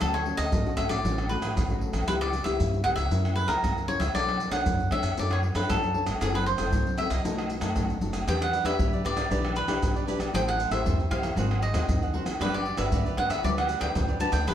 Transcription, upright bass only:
0.01 D2
0.38 D2
0.53 A1
0.90 A1
1.04 A1
1.42 A1
1.56 A1
1.93 A1
2.08 C#2
2.45 C#2
2.60 G2
2.97 C#2
3.11 F#2
3.48 C#2
3.62 C#2
4.00 C#2
4.14 B1
4.51 B1
4.66 F#2
5.03 F#2
5.18 F#2
5.55 F#2
5.70 F#2
6.07 G1
6.21 F#1
6.59 F#1
6.73 C2
7.10 C2
7.25 B1
7.61 F#2
7.77 A1
8.01 F#1
8.27 E2
8.64 E2
8.79 B1
9.17 B1
9.31 B1
9.68 B1
9.83 B1
10.19 B1
10.34 A1
10.71 A1
10.85 E2
11.22 E2
11.36 G#1
11.74 D#2
11.88 D#2
12.25 D#2
12.41 G1
12.78 G1
12.92 D2
13.30 D2
13.44 D2
13.81 D2
13.96 D2
14.33 D2
14.47 E1

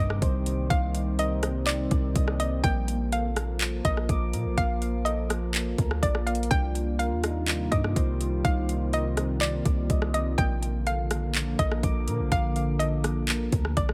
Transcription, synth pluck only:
Already playing: D#5
0.70 F5
1.19 D#5
1.66 D5
2.40 D#5
2.64 G5
3.13 F5
3.85 D#5
4.58 F5
5.05 D#5
6.03 D5
6.27 F5
6.51 G5
6.99 F5
7.72 D#5
8.45 F5
8.94 D#5
9.41 D5
10.14 D#5
10.38 G5
10.87 F5
11.59 D#5
12.32 F5
12.79 D#5
13.77 D5

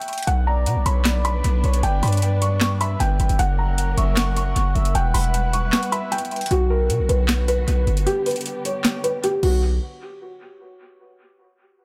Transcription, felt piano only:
Already playing: G5
0.27 F#5
0.47 A#5
0.86 B5
1.25 B5
1.83 G5
2.03 B5
2.42 C#6
2.81 B5
3.00 G5
3.39 F#5
3.59 A#5
3.97 C#6
4.37 C#6
4.95 G5
5.14 B5
5.53 C#6
5.92 B5
6.12 G5
6.51 F#4
6.70 A#4
7.09 B4
7.48 B4
8.06 G4
8.26 B4
8.65 C#5
9.04 B4
9.24 G4
9.43 F#4

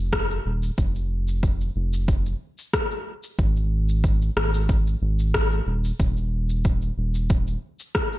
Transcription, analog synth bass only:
Already playing: F1
0.46 D#1
0.78 F1
1.76 F1
3.38 G#1
4.36 G#1
5.02 G#1
5.67 D#1
5.99 D#1
6.98 D#1

